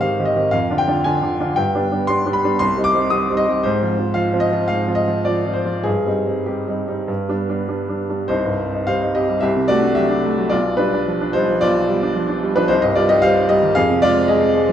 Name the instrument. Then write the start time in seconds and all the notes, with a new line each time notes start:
upright piano
Already playing: D#3 C4 G4 C5
0.01 D#3 C4 G4 F5
0.19 D#3 C4 G4
0.25 D#5
0.36 D#3 C4 G4
0.51 F2 F5
0.70 D3 D4 F4
0.78 G5
0.87 D3 D4 F4
1.04 D3 D4 F4 G#5
1.22 D3 D4 F4
1.40 D3 D4 F4
1.56 G2 G5
1.75 G3 B3 D4
1.91 G3 B3 D4
2.07 G3 B3 D4 C6
2.26 G3 B3 D4
2.33 B5
2.44 G3 B3 D4
2.59 C2 C6
2.77 G3 C4 D#4
2.84 D6
2.94 G3 C4 D#4
3.10 G3 C4 D#4 D#6
3.30 G3 C4 D#4
3.37 D#5
3.47 G3 C4 D#4
3.63 G#2 C5
3.82 F3 C4 F4
3.98 F3 C4 F4
4.14 F3 C4 F4 F5
4.33 F3 C4 F4
4.40 D#5
4.51 F3 C4 F4
4.68 G#2 F5
4.88 F3 C4 F4
4.95 D#5
5.07 F3 C4 F4
5.25 F3 C4 F4 D5
5.45 F3 C4 F4
5.53 C5
5.65 F3 C4 F4
5.84 G2 G#4
6.06 G3 C4 D#4
6.26 G3 C4 D#4
6.46 G3 C4 D#4 G4
6.68 G3 C4 D#4
6.87 G3 C4 D#4
7.08 G2
7.28 G3 B3 D4
7.49 G3 B3 D4
7.68 G3 B3 D4
7.89 G3 B3 D4
8.09 G3 B3 D4
8.28 C2 D#4 C5
8.45 G2
8.59 C4
8.73 D#4
8.87 G3 C5 F5
9.02 D#4
9.15 C4 G4 D#5
9.29 G3
9.41 C2 G4 E5
9.56 C3
9.68 A3 F#4 D5
9.82 D4
9.95 F#3 G4 E5
10.10 D4
10.24 A3
10.37 F#3
10.49 B1 F4 D5
10.65 B2
10.77 G3 D4 B4
10.94 D4
11.07 F3
11.21 D4
11.33 G3 D#4 C5
11.49 F3
11.61 B1 F4 D5
11.76 B2
11.89 G3
12.03 D4
12.16 F3
12.29 D4
12.43 G3
12.56 F3 D4 B4
12.68 C2 D#4 C5
12.82 G2 G4 D#5
12.95 G3 F4 D5
13.09 D#4 G4 D#5
13.22 G3 C5 F5
13.36 D#4
13.49 G3 G4 D#5
13.62 D#3
13.75 F2 G#4 F5
13.90 C3
14.02 G#3 F4 D5
14.17 C4
14.28 F3 G#4 D#5
14.43 C4
14.56 G#3
14.68 F3